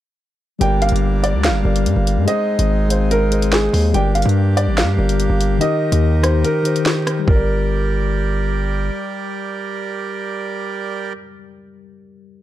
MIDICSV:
0, 0, Header, 1, 6, 480
1, 0, Start_track
1, 0, Tempo, 416667
1, 703, Time_signature, 4, 2, 24, 8
1, 14314, End_track
2, 0, Start_track
2, 0, Title_t, "Grand piano"
2, 0, Program_c, 0, 0
2, 703, Note_on_c, 0, 79, 82
2, 895, Note_off_c, 0, 79, 0
2, 944, Note_on_c, 0, 77, 86
2, 1136, Note_off_c, 0, 77, 0
2, 1423, Note_on_c, 0, 74, 83
2, 1615, Note_off_c, 0, 74, 0
2, 1662, Note_on_c, 0, 77, 92
2, 2576, Note_off_c, 0, 77, 0
2, 2621, Note_on_c, 0, 75, 99
2, 3299, Note_off_c, 0, 75, 0
2, 3343, Note_on_c, 0, 72, 74
2, 3535, Note_off_c, 0, 72, 0
2, 3584, Note_on_c, 0, 70, 98
2, 4034, Note_off_c, 0, 70, 0
2, 4062, Note_on_c, 0, 68, 89
2, 4514, Note_off_c, 0, 68, 0
2, 4543, Note_on_c, 0, 79, 86
2, 4735, Note_off_c, 0, 79, 0
2, 4781, Note_on_c, 0, 77, 78
2, 4974, Note_off_c, 0, 77, 0
2, 5263, Note_on_c, 0, 74, 90
2, 5455, Note_off_c, 0, 74, 0
2, 5502, Note_on_c, 0, 77, 83
2, 6416, Note_off_c, 0, 77, 0
2, 6461, Note_on_c, 0, 75, 99
2, 7138, Note_off_c, 0, 75, 0
2, 7182, Note_on_c, 0, 72, 77
2, 7375, Note_off_c, 0, 72, 0
2, 7422, Note_on_c, 0, 70, 90
2, 8336, Note_off_c, 0, 70, 0
2, 8380, Note_on_c, 0, 70, 84
2, 9775, Note_off_c, 0, 70, 0
2, 14314, End_track
3, 0, Start_track
3, 0, Title_t, "Tine electric piano"
3, 0, Program_c, 1, 4
3, 679, Note_on_c, 1, 55, 93
3, 694, Note_on_c, 1, 67, 88
3, 709, Note_on_c, 1, 70, 83
3, 725, Note_on_c, 1, 74, 103
3, 911, Control_c, 1, 64, 127
3, 1441, Note_off_c, 1, 55, 0
3, 1448, Note_off_c, 1, 67, 0
3, 1456, Note_off_c, 1, 70, 0
3, 1464, Note_off_c, 1, 74, 0
3, 1873, Note_on_c, 1, 55, 76
3, 1888, Note_on_c, 1, 67, 69
3, 1903, Note_on_c, 1, 70, 76
3, 1919, Note_on_c, 1, 74, 89
3, 2450, Note_off_c, 1, 55, 0
3, 2458, Note_off_c, 1, 67, 0
3, 2466, Note_off_c, 1, 70, 0
3, 2473, Note_off_c, 1, 74, 0
3, 2594, Note_on_c, 1, 56, 106
3, 2609, Note_on_c, 1, 68, 87
3, 2624, Note_on_c, 1, 72, 98
3, 2635, Control_c, 1, 64, 0
3, 2640, Note_on_c, 1, 75, 107
3, 2811, Control_c, 1, 64, 127
3, 3171, Note_off_c, 1, 56, 0
3, 3178, Note_off_c, 1, 68, 0
3, 3186, Note_off_c, 1, 72, 0
3, 3194, Note_off_c, 1, 75, 0
3, 3316, Note_on_c, 1, 56, 74
3, 3330, Note_on_c, 1, 68, 70
3, 3347, Note_on_c, 1, 72, 72
3, 3362, Note_on_c, 1, 77, 80
3, 3704, Note_off_c, 1, 56, 0
3, 3711, Note_off_c, 1, 68, 0
3, 3720, Note_off_c, 1, 72, 0
3, 3727, Note_off_c, 1, 77, 0
3, 3802, Note_on_c, 1, 56, 84
3, 3818, Note_on_c, 1, 68, 70
3, 3833, Note_on_c, 1, 72, 78
3, 3848, Note_on_c, 1, 75, 83
3, 4375, Note_off_c, 1, 56, 0
3, 4383, Note_off_c, 1, 68, 0
3, 4390, Note_off_c, 1, 72, 0
3, 4398, Note_off_c, 1, 75, 0
3, 4521, Note_on_c, 1, 55, 106
3, 4535, Note_on_c, 1, 67, 93
3, 4550, Note_on_c, 1, 70, 94
3, 4555, Control_c, 1, 64, 0
3, 4566, Note_on_c, 1, 74, 109
3, 4746, Control_c, 1, 64, 127
3, 5282, Note_off_c, 1, 55, 0
3, 5289, Note_off_c, 1, 67, 0
3, 5297, Note_off_c, 1, 70, 0
3, 5304, Note_off_c, 1, 74, 0
3, 5714, Note_on_c, 1, 55, 84
3, 5730, Note_on_c, 1, 67, 74
3, 5745, Note_on_c, 1, 70, 78
3, 5760, Note_on_c, 1, 74, 89
3, 6291, Note_off_c, 1, 55, 0
3, 6299, Note_off_c, 1, 67, 0
3, 6306, Note_off_c, 1, 70, 0
3, 6314, Note_off_c, 1, 74, 0
3, 6436, Note_on_c, 1, 51, 97
3, 6453, Note_on_c, 1, 63, 91
3, 6467, Note_on_c, 1, 67, 93
3, 6478, Control_c, 1, 64, 0
3, 6483, Note_on_c, 1, 70, 116
3, 6705, Control_c, 1, 64, 127
3, 7012, Note_off_c, 1, 51, 0
3, 7020, Note_off_c, 1, 63, 0
3, 7027, Note_off_c, 1, 67, 0
3, 7035, Note_off_c, 1, 70, 0
3, 7158, Note_on_c, 1, 51, 78
3, 7173, Note_on_c, 1, 63, 72
3, 7188, Note_on_c, 1, 67, 64
3, 7204, Note_on_c, 1, 72, 82
3, 7545, Note_off_c, 1, 51, 0
3, 7553, Note_off_c, 1, 63, 0
3, 7560, Note_off_c, 1, 67, 0
3, 7568, Note_off_c, 1, 72, 0
3, 7636, Note_on_c, 1, 51, 85
3, 7651, Note_on_c, 1, 63, 73
3, 7666, Note_on_c, 1, 67, 70
3, 7681, Note_on_c, 1, 72, 91
3, 8212, Note_off_c, 1, 51, 0
3, 8219, Note_off_c, 1, 63, 0
3, 8227, Note_off_c, 1, 67, 0
3, 8235, Note_off_c, 1, 72, 0
3, 8290, Note_on_c, 1, 55, 84
3, 8351, Note_on_c, 1, 67, 78
3, 8400, Control_c, 1, 64, 0
3, 8413, Note_on_c, 1, 70, 79
3, 8474, Note_on_c, 1, 74, 92
3, 8615, Control_c, 1, 64, 127
3, 12728, Note_off_c, 1, 55, 0
3, 12789, Note_off_c, 1, 67, 0
3, 12851, Note_off_c, 1, 70, 0
3, 12912, Note_off_c, 1, 74, 0
3, 14314, End_track
4, 0, Start_track
4, 0, Title_t, "Accordion"
4, 0, Program_c, 2, 21
4, 702, Note_on_c, 2, 55, 77
4, 702, Note_on_c, 2, 62, 86
4, 703, Note_on_c, 2, 58, 75
4, 2603, Note_off_c, 2, 55, 0
4, 2603, Note_off_c, 2, 62, 0
4, 2604, Note_off_c, 2, 58, 0
4, 2622, Note_on_c, 2, 60, 75
4, 2622, Note_on_c, 2, 63, 88
4, 2624, Note_on_c, 2, 56, 76
4, 4523, Note_off_c, 2, 60, 0
4, 4523, Note_off_c, 2, 63, 0
4, 4524, Note_off_c, 2, 56, 0
4, 4546, Note_on_c, 2, 58, 79
4, 4546, Note_on_c, 2, 62, 73
4, 4546, Note_on_c, 2, 67, 86
4, 6445, Note_off_c, 2, 58, 0
4, 6445, Note_off_c, 2, 62, 0
4, 6460, Note_on_c, 2, 70, 84
4, 6461, Note_on_c, 2, 51, 77
4, 6461, Note_on_c, 2, 63, 73
4, 8346, Note_off_c, 2, 67, 0
4, 8362, Note_off_c, 2, 51, 0
4, 8362, Note_off_c, 2, 70, 0
4, 8363, Note_off_c, 2, 63, 0
4, 8383, Note_on_c, 2, 74, 87
4, 8384, Note_on_c, 2, 55, 80
4, 8384, Note_on_c, 2, 67, 71
4, 8384, Note_on_c, 2, 70, 70
4, 12822, Note_off_c, 2, 55, 0
4, 12822, Note_off_c, 2, 67, 0
4, 12822, Note_off_c, 2, 70, 0
4, 12822, Note_off_c, 2, 74, 0
4, 14314, End_track
5, 0, Start_track
5, 0, Title_t, "808-style bass"
5, 0, Program_c, 3, 38
5, 702, Note_on_c, 3, 31, 111
5, 1048, Note_off_c, 3, 31, 0
5, 1061, Note_on_c, 3, 31, 103
5, 1542, Note_on_c, 3, 38, 101
5, 1559, Note_off_c, 3, 31, 0
5, 1721, Note_on_c, 3, 31, 100
5, 1738, Note_off_c, 3, 38, 0
5, 1893, Note_off_c, 3, 31, 0
5, 1901, Note_on_c, 3, 31, 105
5, 2141, Note_on_c, 3, 43, 95
5, 2158, Note_off_c, 3, 31, 0
5, 2256, Note_off_c, 3, 43, 0
5, 2262, Note_on_c, 3, 31, 102
5, 2502, Note_on_c, 3, 43, 98
5, 2519, Note_off_c, 3, 31, 0
5, 2616, Note_off_c, 3, 43, 0
5, 2983, Note_on_c, 3, 32, 104
5, 4257, Note_off_c, 3, 32, 0
5, 4302, Note_on_c, 3, 39, 102
5, 4532, Note_off_c, 3, 39, 0
5, 4542, Note_on_c, 3, 31, 113
5, 4888, Note_off_c, 3, 31, 0
5, 4902, Note_on_c, 3, 43, 107
5, 5382, Note_on_c, 3, 32, 106
5, 5399, Note_off_c, 3, 43, 0
5, 5560, Note_on_c, 3, 43, 102
5, 5578, Note_off_c, 3, 32, 0
5, 5732, Note_off_c, 3, 43, 0
5, 5741, Note_on_c, 3, 31, 99
5, 6087, Note_off_c, 3, 31, 0
5, 6102, Note_on_c, 3, 31, 98
5, 6448, Note_off_c, 3, 31, 0
5, 6821, Note_on_c, 3, 39, 108
5, 7422, Note_off_c, 3, 39, 0
5, 8383, Note_on_c, 3, 31, 110
5, 10256, Note_off_c, 3, 31, 0
5, 14314, End_track
6, 0, Start_track
6, 0, Title_t, "Drums"
6, 702, Note_on_c, 9, 42, 84
6, 817, Note_off_c, 9, 42, 0
6, 942, Note_on_c, 9, 42, 64
6, 1022, Note_off_c, 9, 42, 0
6, 1022, Note_on_c, 9, 42, 63
6, 1102, Note_off_c, 9, 42, 0
6, 1102, Note_on_c, 9, 42, 65
6, 1218, Note_off_c, 9, 42, 0
6, 1424, Note_on_c, 9, 42, 94
6, 1540, Note_off_c, 9, 42, 0
6, 1663, Note_on_c, 9, 38, 118
6, 1664, Note_on_c, 9, 42, 75
6, 1778, Note_off_c, 9, 38, 0
6, 1779, Note_off_c, 9, 42, 0
6, 2024, Note_on_c, 9, 42, 76
6, 2139, Note_off_c, 9, 42, 0
6, 2145, Note_on_c, 9, 42, 84
6, 2260, Note_off_c, 9, 42, 0
6, 2386, Note_on_c, 9, 42, 83
6, 2501, Note_off_c, 9, 42, 0
6, 2623, Note_on_c, 9, 42, 86
6, 2738, Note_off_c, 9, 42, 0
6, 2983, Note_on_c, 9, 42, 87
6, 3098, Note_off_c, 9, 42, 0
6, 3345, Note_on_c, 9, 42, 100
6, 3460, Note_off_c, 9, 42, 0
6, 3584, Note_on_c, 9, 42, 76
6, 3699, Note_off_c, 9, 42, 0
6, 3823, Note_on_c, 9, 42, 84
6, 3938, Note_off_c, 9, 42, 0
6, 3944, Note_on_c, 9, 42, 72
6, 4059, Note_off_c, 9, 42, 0
6, 4061, Note_on_c, 9, 38, 111
6, 4177, Note_off_c, 9, 38, 0
6, 4308, Note_on_c, 9, 46, 59
6, 4423, Note_off_c, 9, 46, 0
6, 4543, Note_on_c, 9, 42, 86
6, 4658, Note_off_c, 9, 42, 0
6, 4783, Note_on_c, 9, 42, 64
6, 4864, Note_off_c, 9, 42, 0
6, 4864, Note_on_c, 9, 42, 65
6, 4944, Note_off_c, 9, 42, 0
6, 4944, Note_on_c, 9, 42, 64
6, 5059, Note_off_c, 9, 42, 0
6, 5266, Note_on_c, 9, 42, 97
6, 5381, Note_off_c, 9, 42, 0
6, 5504, Note_on_c, 9, 38, 115
6, 5505, Note_on_c, 9, 42, 79
6, 5620, Note_off_c, 9, 38, 0
6, 5620, Note_off_c, 9, 42, 0
6, 5866, Note_on_c, 9, 42, 75
6, 5981, Note_off_c, 9, 42, 0
6, 5986, Note_on_c, 9, 42, 83
6, 6101, Note_off_c, 9, 42, 0
6, 6228, Note_on_c, 9, 42, 83
6, 6343, Note_off_c, 9, 42, 0
6, 6464, Note_on_c, 9, 42, 86
6, 6579, Note_off_c, 9, 42, 0
6, 6823, Note_on_c, 9, 42, 90
6, 6938, Note_off_c, 9, 42, 0
6, 7182, Note_on_c, 9, 37, 106
6, 7186, Note_on_c, 9, 42, 98
6, 7298, Note_off_c, 9, 37, 0
6, 7301, Note_off_c, 9, 42, 0
6, 7425, Note_on_c, 9, 42, 76
6, 7540, Note_off_c, 9, 42, 0
6, 7663, Note_on_c, 9, 42, 85
6, 7779, Note_off_c, 9, 42, 0
6, 7785, Note_on_c, 9, 42, 74
6, 7900, Note_off_c, 9, 42, 0
6, 7902, Note_on_c, 9, 38, 109
6, 8017, Note_off_c, 9, 38, 0
6, 8143, Note_on_c, 9, 37, 98
6, 8147, Note_on_c, 9, 42, 82
6, 8258, Note_off_c, 9, 37, 0
6, 8262, Note_off_c, 9, 42, 0
6, 8382, Note_on_c, 9, 36, 103
6, 8498, Note_off_c, 9, 36, 0
6, 14314, End_track
0, 0, End_of_file